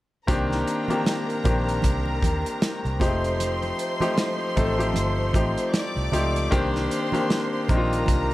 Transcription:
0.27 fingered electric bass C2, grand piano D#3 A#3 C4 D4 G4, violin section A#4 A#5, kick, closed hi-hat, muted conga
0.51 snare, muted conga
0.67 closed hi-hat
0.88 grand piano D#3 A#3 C4 D4 G4, closed hi-hat, high conga
1.05 snare, closed hi-hat, muted conga
1.30 closed hi-hat
1.44 fingered electric bass A#1, grand piano D#3 A#3 C4 D4 G4, kick, closed hi-hat, low conga
1.69 closed hi-hat
1.82 fingered electric bass C2, kick, closed hi-hat, muted conga, high conga
2.06 muted conga
2.22 fingered electric bass D#2, kick, closed hi-hat, high conga
2.46 closed hi-hat
2.62 snare, closed hi-hat, muted conga
2.85 fingered electric bass C2, closed hi-hat
3.00 fingered electric bass F1, grand piano F3 G#3 C4 D#4 G4, violin section C5 C6, kick, closed hi-hat, low conga
3.07 grand piano A3
3.24 closed hi-hat
3.40 closed hi-hat, muted conga
3.62 closed hi-hat, muted conga
3.79 closed hi-hat
4.00 grand piano F3 A3 C4 D#4 G4, closed hi-hat, high conga
4.17 snare, closed hi-hat, muted conga
4.56 fingered electric bass A1, grand piano F3 A3 C4 D#4 A4, kick, closed hi-hat, low conga
4.78 grand piano F3 A3 C4 D#4 G4, closed hi-hat
4.94 fingered electric bass G1, closed hi-hat, high conga
5.33 fingered electric bass A1, grand piano F3 A3 C4 D#4 G4, kick, closed hi-hat, high conga
5.58 closed hi-hat
5.74 violin section D5 D6, snare, closed hi-hat
5.95 fingered electric bass C2, closed hi-hat, muted conga
6.12 fingered electric bass C#2, grand piano F3 A3 C4 D#4 G4, closed hi-hat, low conga
6.36 closed hi-hat
6.51 fingered electric bass C2, grand piano D#3 A#3 C4 D4 G4, violin section C5 C6, kick, closed hi-hat
6.74 snare, muted conga
6.91 closed hi-hat
7.12 grand piano D#3 A#3 C4 D4 G4, closed hi-hat, high conga
7.30 snare, closed hi-hat
7.68 fingered electric bass A#1, grand piano D#3 A#3 C4 D4 D#4, violin section A#4 A#5, kick, closed hi-hat, low conga
7.76 grand piano F4
7.93 closed hi-hat
8.06 fingered electric bass C2, kick, closed hi-hat, high conga

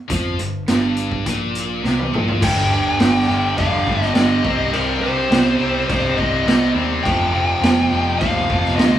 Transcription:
0.09 picked electric bass F2, distorted electric guitar F3, kick, closed hi-hat
0.39 picked electric bass G1, distorted electric guitar G2, closed hi-hat
0.68 picked electric bass G1, distorted electric guitar G2, snare, closed hi-hat
0.97 closed hi-hat
1.12 kick
1.25 picked electric bass A#1, distorted electric guitar A#2, kick, closed hi-hat
1.55 closed hi-hat
1.84 picked electric bass C2, distorted electric guitar C3, snare
1.99 high tom
2.13 picked electric bass A#1, distorted electric guitar A#2, mid tom
2.28 floor tom
2.42 picked electric bass G1, distorted electric guitar G2 D3 G3, lead electric guitar G5, kick, crash
2.70 distorted electric guitar G2 D3 G3
2.99 picked electric bass G1, distorted electric guitar G2 D3 G3, snare, crash
3.28 picked electric bass G1, distorted electric guitar G2 D3 G3
3.57 picked electric bass F1, distorted electric guitar G2 D3 G3, lead electric guitar F5, kick, crash
3.86 picked electric bass G1, distorted electric guitar G2 D3 G3, kick
4.01 lead electric guitar D#5, snare
4.14 picked electric bass G1, distorted electric guitar G2 D3 G3, lead electric guitar D#5, snare, crash
4.44 picked electric bass C2, distorted electric guitar C3 G3 C4, kick
4.72 picked electric bass C2, distorted electric guitar C3 G3 C4, lead electric guitar A#4, crash
5.01 picked electric bass C2, distorted electric guitar C3 G3 C4, lead electric guitar C5
5.30 picked electric bass C2, distorted electric guitar C3 G3 C4, snare, crash
5.59 picked electric bass C2, distorted electric guitar C3 G3 C4
5.88 picked electric bass C2, distorted electric guitar C3 G3 C4, lead electric guitar C5, kick, crash
6.17 picked electric bass C2, distorted electric guitar C3 G3 C4, lead electric guitar D#5, kick
6.46 picked electric bass C2, distorted electric guitar C3 G3 C4, snare, crash
6.75 picked electric bass D#2, distorted electric guitar C3 G3 C4
7.03 picked electric bass F1, distorted electric guitar F2 C3 F3, lead electric guitar G5, kick, crash
7.32 distorted electric guitar F2 C3 F3
7.61 picked electric bass F1, distorted electric guitar F2 C3 F3, snare, crash
7.91 picked electric bass F1, distorted electric guitar F2 C3 F3
8.18 picked electric bass D#2, distorted electric guitar F2 C3 F3, lead electric guitar F5, kick, crash
8.49 picked electric bass F1, distorted electric guitar F2 C3 F3, kick
8.65 snare
8.76 picked electric bass D2, distorted electric guitar F2 C3 F3, lead electric guitar D#5, snare, crash
8.94 snare

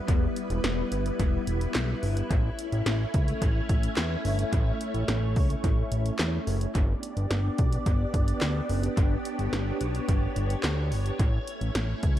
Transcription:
Already playing: string machine G3 B3 E4 B4
0.08 analog synth bass E1, kick, closed hi-hat
0.36 closed hi-hat
0.50 analog synth bass E1, closed hi-hat
0.64 analog synth bass E1, snare, closed hi-hat
0.92 analog synth bass G1, closed hi-hat
1.06 closed hi-hat
1.20 analog synth bass E1, kick, closed hi-hat
1.47 analog synth bass E1, closed hi-hat
1.61 closed hi-hat
1.75 analog synth bass B1, snare, clap, closed hi-hat
2.03 analog synth bass G1, open hi-hat
2.17 closed hi-hat
2.31 analog synth bass A1, string machine A3 C#4 C#5, kick, closed hi-hat
2.59 closed hi-hat
2.72 analog synth bass A1, closed hi-hat
2.86 analog synth bass A1, snare, closed hi-hat
3.14 analog synth bass C#2, kick, closed hi-hat
3.28 closed hi-hat
3.42 analog synth bass A1, kick, closed hi-hat
3.69 analog synth bass A1, kick, closed hi-hat
3.83 closed hi-hat
3.97 analog synth bass E2, snare, clap, closed hi-hat
4.25 analog synth bass G1, open hi-hat
4.39 closed hi-hat
4.53 analog synth bass A1, kick, closed hi-hat
4.81 closed hi-hat
4.94 analog synth bass A1, closed hi-hat
5.08 analog synth bass A1, snare, closed hi-hat
5.36 analog synth bass C#2, kick, open hi-hat
5.50 closed hi-hat
5.64 analog synth bass A1, kick, closed hi-hat
5.92 analog synth bass A1, closed hi-hat
6.06 closed hi-hat
6.19 analog synth bass E2, snare, clap, closed hi-hat
6.47 analog synth bass F#1, open hi-hat
6.61 closed hi-hat
6.75 analog synth bass G1, string machine B3 D4 G4 D5, kick, closed hi-hat
7.03 closed hi-hat
7.17 analog synth bass G1, closed hi-hat
7.31 analog synth bass G1, snare, closed hi-hat
7.58 analog synth bass B1, kick, closed hi-hat
7.72 closed hi-hat
7.86 analog synth bass G1, kick, closed hi-hat
8.14 analog synth bass G1, kick, closed hi-hat
8.28 closed hi-hat
8.41 analog synth bass D2, snare, clap, closed hi-hat
8.69 analog synth bass F#1, open hi-hat
8.83 closed hi-hat
8.97 analog synth bass G1, string machine C#5, kick, closed hi-hat
9.25 closed hi-hat
9.39 analog synth bass G1, closed hi-hat
9.53 analog synth bass G1, snare, closed hi-hat
9.81 analog synth bass B1, closed hi-hat
9.95 closed hi-hat
10.08 analog synth bass G1, kick, closed hi-hat
10.36 analog synth bass G1, closed hi-hat
10.50 closed hi-hat
10.64 analog synth bass D2, snare, clap, closed hi-hat
10.92 analog synth bass G1, open hi-hat
11.06 closed hi-hat
11.19 analog synth bass A1, string machine A3 C#4 E4, kick, closed hi-hat
11.48 closed hi-hat
11.61 analog synth bass A1, closed hi-hat
11.75 analog synth bass A1, snare, closed hi-hat
12.03 analog synth bass C#2, kick, closed hi-hat

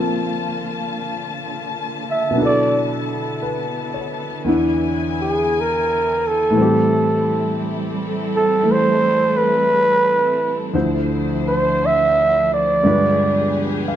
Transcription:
Already playing: grand piano A#2 F3 A#3 C4 D4 F4, string section D3 A#3 F4 A5
2.10 muted trumpet E5
2.31 grand piano B2 F#3
2.35 grand piano B3 D4, string section B3 E4
2.40 grand piano E4 A4
2.45 muted trumpet D5
3.42 grand piano B4
3.94 grand piano C#5
4.44 grand piano E2 E3 B3
4.48 grand piano D4 E4, string section G#5
5.21 muted trumpet G#4
5.60 muted trumpet A#4
6.27 muted trumpet A4
6.50 grand piano A2 E3
6.56 grand piano G3 C4, string section G3 C4 A4
6.62 grand piano G4
8.36 muted trumpet A4
8.63 grand piano E3 A3 A4
8.72 muted trumpet C5
9.37 muted trumpet B4
10.74 grand piano D2 D3 F3 E4 C5, string section F3 D4 C5
11.48 muted trumpet C5
11.86 muted trumpet E5
12.53 muted trumpet D5
12.83 grand piano G2 D3 G#3 F4 B4, string section B3 G4 G#4
13.88 grand piano F5

